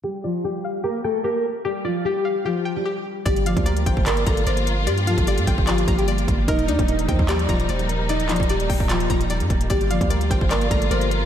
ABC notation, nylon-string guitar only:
X:1
M:4/4
L:1/16
Q:1/4=149
K:Gm
V:1 name="Nylon-string guitar"
[G,G]2 [F,F]2 [G,G]4 [B,B]2 [A,A]2 [B,B]2 z2 | [G,G]2 [F,F]2 [G,G]4 [F,F]3 [G,G]4- [G,G] | [G,G]2 [F,F]2 [G,G]4 [B,B]2 [A,A]2 [B,B]2 z2 | [G,G]2 [F,F]2 [G,G]4 [F,F]3 [G,G]4- [G,G] |
[Ee]2 [Dd]2 [Ee]4 [G,G]2 [F,F]2 [G,G]2 z2 | [Ee]2 [F,F]2 [G,G]4 [F,F]3 [G,G]4- [G,G] | [G,G]2 [F,F]2 [G,G]4 [B,B]2 [A,A]2 [B,B]2 z2 |]